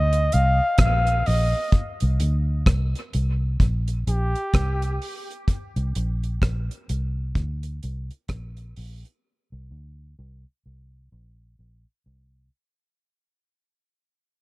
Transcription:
Already playing: D2 D#5
0.13 closed hi-hat
0.32 C2 F5, closed hi-hat
0.78 A#1 F5, kick, cross-stick, closed hi-hat
1.07 closed hi-hat
1.26 A#1 D#5, open hi-hat
1.72 kick, closed hi-hat
2.00 C2, closed hi-hat
2.20 D2, closed hi-hat
2.66 C2, kick, cross-stick, closed hi-hat
2.95 closed hi-hat
3.13 C2, closed hi-hat
3.60 A#1, kick, closed hi-hat
3.88 closed hi-hat
4.07 A#1 G4, closed hi-hat
4.35 closed hi-hat
4.54 C2, kick, cross-stick, closed hi-hat
4.82 closed hi-hat
5.02 open hi-hat
5.31 closed hi-hat
5.48 kick, closed hi-hat
5.76 C2, closed hi-hat
5.95 A#1, closed hi-hat
6.23 closed hi-hat
6.42 A#1, kick, cross-stick, closed hi-hat
6.71 closed hi-hat
6.89 C2, closed hi-hat
7.35 D2, kick, closed hi-hat
7.63 closed hi-hat
7.83 C2, closed hi-hat
8.11 closed hi-hat
8.28 A#1, kick, cross-stick, closed hi-hat
8.57 closed hi-hat
8.76 A#1, open hi-hat
9.05 closed hi-hat
9.52 C2
9.71 D2
10.19 C2
10.66 C2
11.12 A#1
11.59 A#1
12.06 C2

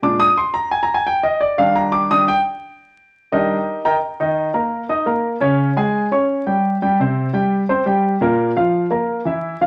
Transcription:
0.02 A#2 G#3 D4 D6
0.20 D#6
0.37 C6
0.54 A#5
0.71 G#5
0.83 A#5
0.94 G#5
1.07 G5
1.23 D#5
1.40 D5
1.58 D#3 G3 D4 F5
1.75 A#5
1.92 D6
2.10 D#3 G3 D4 D#6
2.28 G5
3.32 D#3 G3 D4 D#4 G4 A#4 D#5
3.85 A#4 D#5 G5 A#5
4.20 D#3 D#4 D#5
4.54 A#3 A#4 A#5
4.89 D#4 D#5 D#6
5.06 A#3 A#4 A#5
5.40 C#3 C#4 C#5
5.77 G#3 G#4 G#5
6.11 C#4 C#5 C#6
6.46 G3 G4 G5
6.82 G3 G4 G5
7.00 C3 C4 C5
7.33 G3 G4 G5
7.69 C4 C5 C6
7.86 G3 G4 G5
8.21 A#2 A#3 A#4
8.56 F3 F4 F5
8.90 A#3 A#4 A#5
9.25 E3 E4 E5
9.61 F3 F4 F5

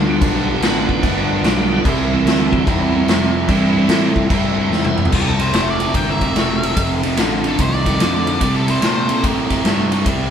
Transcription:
Already playing: D2 G2 D3 G3 B3 D4
0.08 D3 G3 B3 F4
0.21 B1 G2 D3 G3 B3 D4, kick, crash
0.32 F#4
0.37 G4
0.60 A1 B3, snare, crash
0.65 D4
0.88 D3 G3 B3, kick
1.02 G1 G2 D3 G3 B3 D4, kick, crash
1.43 B1, snare, crash
1.73 F4
1.84 C2 C3 G3 C4 E4 G4, kick, crash
1.97 A4 A#4
2.12 E3 G3 C4
2.25 D2, snare, crash
2.53 G4, kick
2.66 E2 C3 G3 C4 D#4 E4, kick, crash
2.82 C4
2.95 C4
3.08 F2, snare, crash
3.47 G2 C3 E3 G3 C4 E4, kick, crash
3.89 A2, snare, crash
4.16 kick
4.29 G2 C3 G3 C4 E4 F#5, kick, crash
4.34 G5
4.48 D#5
4.60 G5
4.71 E2 D#5, snare
4.85 C5 E5, high tom
4.98 mid tom
5.05 floor tom
5.11 C2 C3 G3 C4 E4 G4 C5, kick, crash
5.15 G4
5.28 A4
5.39 C3 G3 C5, ride
5.53 F1 C3 A3, snare, ride
5.71 D5
5.80 C3 A3, ride
5.94 G1 C3 A#3 G5, kick, ride
6.11 E5
6.21 C3 A#3, kick, ride
6.35 E1 C3 A3, snare, ride
6.63 C3 A3, ride
6.76 F1 F2 C3 C4 F4 A4 C5, kick, ride
7.03 F2 C3, ride
7.17 A1 F2 D3, snare, ride
7.44 F2 D3 A4, ride
7.59 C2 F2 D#3 C5, kick, ride
7.74 D5
7.86 F2 D#3, kick, ride
7.99 F2 D3, snare, ride
8.27 F2 D3, ride
8.41 C3 G3 C4 E4 G4 C5, kick, ride
8.56 A4
8.68 C3 G3 C5, ride
8.82 A#2 C3 A3 C5, snare, ride
9.09 C3 A3, ride
9.24 A2 C3 A#3, kick, ride
9.50 C3 A#3, kick, ride
9.64 G2 C3 A3, snare, ride
9.92 C3 A3, ride
10.06 C2 C3 G3, kick, ride

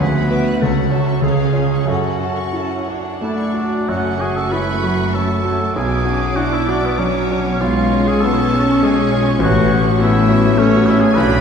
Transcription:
Already playing: F#5
0.00 D2 B3 F#4 B4 F#5
0.18 B5
0.28 F#4 B4 E5
0.32 D6
0.47 F#6
0.57 C#2 C#4 A4 F#5
0.62 C#2 C#5
0.76 F#5
0.89 F#4 C#5 E5
0.93 A5
1.08 C#6
1.22 C#2 G#4 C#5 F5
1.40 F5
1.52 F4 C#5 G#5
1.74 C#6
1.85 F#2 F#4 A4 C#5 F#5
1.90 F#5
2.06 F#5
2.20 F#4 A5
2.38 C#6
2.53 C#4 E4 A5
2.72 F#5
2.87 D4 F#4 C#5
3.04 F#5
3.21 A3 D4 E4 D5 A5
3.38 C#6
3.54 F#4 A5
3.72 F#5
3.88 F#1 F#2 F#3 A3 C#4 F#4 F#5 C#6
4.05 A3
4.20 C#4 F#4 G#4 G#5
4.37 F#4 A4 A5
4.51 G#3 C#4 E4 B4 B5
4.68 A3
4.83 F#3 F#4
4.98 A3
5.14 F#3 A3 C#4 A4 A5
5.29 F#4
5.44 C#4 F#4
5.60 A3
5.75 B1 F#3 B3 G#4 G#5 D6
5.90 B3
6.05 C#4 D4 F#4
6.21 F#4
6.36 D4 E4 F#4 F#5
6.53 B3 E4 E5
6.68 F#3 D4 F#4 D5
6.84 B3 B4
6.98 F#3 C#4 D4 C#5
7.16 F#4
7.31 D4 F#4
7.45 B3
7.60 B1 G#3 B3 F4 F5 C#6
7.76 C#4
7.91 C#4 F4
8.06 G#4 G#5
8.21 B3 F4 A4 A5
8.38 C#4
8.53 B3 C#4
8.67 C#4
8.83 G#3 F4 G#4 G#5
8.98 G#4
9.12 C#4 F4
9.27 C#4
9.39 A1 F#3 A3 B3
9.43 F#4 F#5
9.56 A3
9.70 A3 C#4
9.86 F#4
10.00 B3 C#4 E4 E5
10.15 A3
10.29 F#3 C#4
10.45 A3
10.57 A3 C#4 C#5
10.74 F#4
10.86 C#4 E4 E5
11.00 A3 G#4 G#5
11.15 B1 D4 B4 B5

